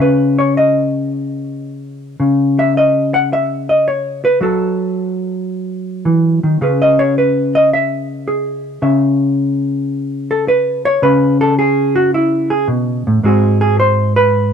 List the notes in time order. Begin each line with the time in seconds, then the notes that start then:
0.00 C#3 B4
0.39 C#5
0.57 D#5
2.20 C#3
2.59 E5
2.77 D#5
3.14 F#5
3.33 E5
3.69 D#5
3.88 C#5
4.25 B4
4.41 F#3 F#4 A4
6.05 E3
6.43 D#3
6.61 C#3 C#4 G#4 B4
6.82 D#5
6.99 G#4 C#5
7.18 B4
7.55 D#5
7.73 E5
8.28 G#4
8.82 C#3 E5
10.31 A4
10.48 B4
10.85 C#5
11.02 C#3 B4
11.41 A4
11.59 G#4
11.96 F#4
12.14 E4
12.50 G#4
12.68 B2
13.07 A2
13.23 G#2 G#3 C4 F#4 G#4
13.61 G#4
13.80 C5
14.16 B4